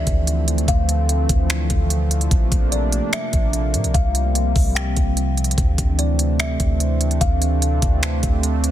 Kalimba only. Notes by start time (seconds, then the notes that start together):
Already playing: E5
0.68 F5
2.72 D5
3.13 E5
3.94 F5
4.75 G5
5.99 D5
6.40 E5
7.21 F5